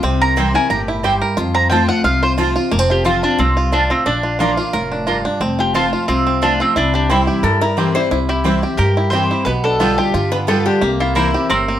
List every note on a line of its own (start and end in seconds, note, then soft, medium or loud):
0.03 0.54 C2 loud
0.03 0.67 C3 medium
0.03 0.37 C4 medium
0.21 0.54 A#4 medium
0.21 0.52 A#5 loud
0.36 0.54 E3 medium
0.36 0.54 G3 medium
0.36 0.46 C4 medium
0.36 0.54 C4 medium
0.36 1.25 C4 medium
0.36 0.46 E4 loud
0.36 0.53 E4 loud
0.36 0.47 C5 loud
0.36 0.47 G5 loud
0.54 0.70 C4 medium
0.54 0.69 E4 medium
0.54 1.01 A#4 medium
0.54 0.70 G#5 loud
0.70 1.21 G1 medium
0.70 1.02 A2 loud
0.70 1.03 G4 medium
0.70 0.81 A#5 medium
0.88 1.34 E4 medium
1.03 1.36 G2 medium
1.03 1.13 C4 medium
1.03 1.13 E4 medium
1.03 1.38 G4 medium
1.03 1.13 C5 medium
1.03 1.14 G5 loud
1.22 1.37 A#4 medium
1.37 1.88 F2 loud
1.37 2.01 F2 loud
1.37 1.69 F4 medium
1.55 2.01 C4 medium
1.55 1.69 A#5 loud
1.70 2.03 F3 medium
1.70 2.03 A3 medium
1.70 1.80 C4 medium
1.70 2.03 C4 medium
1.70 1.87 F4 medium
1.70 1.81 F4 medium
1.70 2.04 F4 medium
1.70 1.81 C5 loud
1.70 1.88 G5 loud
1.70 1.81 A5 loud
1.89 2.03 F4 medium
1.89 2.04 F#5 loud
2.04 2.55 C2 medium
2.04 2.69 C3 medium
2.04 2.21 F4 medium
2.04 2.22 F5 medium
2.23 2.36 F4 medium
2.23 2.32 C5 medium
2.38 2.55 F3 medium
2.38 2.55 A3 loud
2.38 2.47 C4 medium
2.38 2.56 C4 medium
2.38 2.54 F4 medium
2.38 2.48 F4 medium
2.38 2.55 F4 loud
2.38 2.48 C5 medium
2.38 2.48 A5 medium
2.56 2.72 C4 soft
2.56 2.71 F4 medium
2.71 3.23 F1 medium
2.71 3.36 F2 loud
2.71 2.79 A#3 medium
2.79 3.05 C4 medium
2.90 3.05 F4 medium
2.90 3.05 G4 medium
3.04 3.22 F3 medium
3.04 3.22 A3 medium
3.04 3.14 C4 medium
3.04 3.23 C4 medium
3.04 3.15 F4 medium
3.04 3.23 F4 medium
3.04 3.22 F4 loud
3.04 3.15 C5 loud
3.04 3.15 A5 medium
3.23 3.39 C4 medium
3.23 3.40 D4 medium
3.23 3.38 F4 medium
3.23 3.39 F4 medium
3.38 3.90 C2 medium
3.38 3.71 G2 loud
3.38 3.74 C4 medium
3.38 3.57 F4 medium
3.57 3.72 F4 medium
3.72 4.05 A2 medium
3.72 3.82 C4 medium
3.72 3.90 D4 medium
3.72 3.90 F4 medium
3.72 3.82 F4 medium
3.72 3.82 C5 medium
3.72 3.82 A5 medium
3.90 4.05 C4 medium
3.90 4.06 F4 medium
4.06 4.57 A#1 loud
4.06 4.70 A#2 medium
4.06 4.54 D4 medium
4.06 4.38 D4 medium
4.23 4.57 F4 soft
4.39 4.57 F3 medium
4.39 4.87 A#3 medium
4.39 4.49 A#3 medium
4.39 4.57 A#3 medium
4.39 4.58 D4 medium
4.39 4.49 F4 medium
4.39 4.88 F4 medium
4.39 4.56 F4 medium
4.39 4.50 D5 loud
4.39 4.50 A#5 medium
4.57 4.74 D4 soft
4.57 5.04 F4 medium
4.57 4.73 F4 medium
4.73 5.25 F1 medium
4.73 5.06 A2 medium
4.73 5.22 A#4 medium
4.92 5.24 D4 medium
5.07 5.40 G2 medium
5.07 5.17 A#3 medium
5.07 5.41 F4 medium
5.07 5.17 F4 medium
5.07 5.17 D5 medium
5.07 5.17 A#5 medium
5.25 5.41 D4 medium
5.40 5.92 F1 loud
5.40 6.05 F2 medium
5.40 6.26 C4 medium
5.59 5.74 F4 soft
5.59 5.75 G4 medium
5.74 6.07 F3 medium
5.74 6.07 A3 medium
5.74 5.84 C4 medium
5.74 6.07 C4 medium
5.74 5.84 F4 loud
5.74 5.92 F4 medium
5.74 6.06 F4 loud
5.74 6.08 F4 medium
5.74 5.84 C5 loud
5.74 5.85 A5 loud
5.93 6.07 F4 medium
6.08 6.60 C2 medium
6.08 6.73 C3 loud
6.08 6.43 C4 medium
6.08 6.41 F4 medium
6.27 7.09 C4 medium
6.42 6.74 F3 medium
6.42 6.75 A3 medium
6.42 6.52 C4 medium
6.42 6.75 C4 medium
6.42 6.59 D4 medium
6.42 6.52 F4 medium
6.42 6.59 F4 medium
6.42 6.75 F4 medium
6.42 6.52 C5 medium
6.42 6.52 A5 loud
6.60 6.77 C4 medium
6.60 6.76 F4 medium
6.76 7.27 C2 loud
6.76 7.41 C3 medium
6.76 6.94 D4 medium
6.76 7.46 E4 medium
6.94 7.11 D4 medium
6.94 7.27 G4 medium
7.09 7.42 E3 medium
7.09 7.42 G3 medium
7.09 7.19 C4 medium
7.09 7.58 C4 medium
7.09 7.42 C4 medium
7.09 7.19 E4 medium
7.09 7.59 E4 medium
7.09 7.43 E4 medium
7.09 7.20 C5 medium
7.09 7.20 G5 loud
7.27 7.77 G4 medium
7.43 7.95 G2 medium
7.43 8.08 G2 medium
7.43 7.61 A4 medium
7.43 7.92 A#4 medium
7.61 7.95 E4 medium
7.61 7.95 A#4 loud
7.77 8.09 E3 medium
7.77 8.10 G3 medium
7.77 7.87 C4 medium
7.77 8.10 C4 medium
7.77 7.87 E4 medium
7.77 8.10 E4 medium
7.77 8.29 G4 medium
7.77 7.87 C5 medium
7.77 7.87 G5 medium
7.95 8.10 E4 medium
7.95 8.18 C5 loud
8.11 8.63 C2 loud
8.11 8.76 C3 medium
8.11 8.59 E4 medium
8.29 8.60 E4 medium
8.29 8.63 G4 medium
8.44 8.62 E3 medium
8.44 8.62 G3 medium
8.44 8.54 C4 medium
8.44 8.93 C4 medium
8.44 8.63 C4 medium
8.44 8.54 E4 medium
8.44 8.61 E4 loud
8.44 8.54 C5 medium
8.44 8.55 G5 medium
8.62 8.79 C4 soft
8.62 8.78 E4 medium
8.62 9.13 G4 medium
8.77 9.43 G2 loud
8.77 9.30 G2 medium
8.77 9.10 G4 medium
8.77 9.27 A#4 medium
8.97 9.30 E4 medium
9.10 9.44 E3 medium
9.10 9.45 G3 medium
9.10 9.22 C4 medium
9.10 9.45 C4 medium
9.10 9.22 E4 medium
9.10 9.45 E4 medium
9.10 9.80 G4 medium
9.10 9.44 C5 loud
9.10 9.22 C5 medium
9.10 9.23 G5 medium
9.31 9.47 E4 medium
9.45 9.98 B1 medium
9.45 10.11 B2 medium
9.45 9.95 B3 medium
9.45 9.50 B4 loud
9.64 10.11 D4 medium
9.64 9.99 A4 medium
9.80 10.12 D3 medium
9.80 10.12 G3 medium
9.80 9.90 B3 medium
9.80 10.13 B3 medium
9.80 9.97 F4 medium
9.80 9.90 F4 medium
9.80 10.13 F4 medium
9.80 9.90 B4 loud
9.80 9.90 G5 medium
9.98 10.13 F4 medium
9.98 10.30 G4 medium
10.14 10.66 G2 medium
10.14 10.46 D3 medium
10.14 10.47 F4 medium
10.32 10.79 B3 medium
10.32 10.37 B4 loud
10.47 10.80 D3 medium
10.47 10.80 G3 medium
10.47 10.57 B3 medium
10.47 10.81 B3 medium
10.47 10.58 F4 medium
10.47 10.82 F4 medium
10.47 10.81 F4 medium
10.47 10.67 A4 loud
10.47 10.58 B4 loud
10.47 10.58 G5 medium
10.66 10.82 D4 medium
10.66 10.89 G4 medium
10.81 11.34 C2 loud
10.81 11.47 C3 medium
10.81 11.30 A#3 medium
11.00 11.47 E4 medium
11.00 11.15 F4 medium
11.15 11.33 E3 medium
11.15 11.25 A#3 medium
11.15 11.34 A#3 medium
11.15 11.34 C4 medium
11.15 11.47 E4 medium
11.15 11.26 E4 medium
11.15 11.33 E4 loud
11.15 11.48 A#4 medium
11.15 11.26 C5 medium
11.15 11.26 G5 medium
11.34 11.50 C4 soft
11.34 11.49 E4 medium
11.34 11.79 G4 medium
11.50 11.79 G1 medium
11.50 11.79 A2 medium
11.50 11.79 C4 medium
11.50 11.79 A#4 medium
11.68 11.79 A#3 medium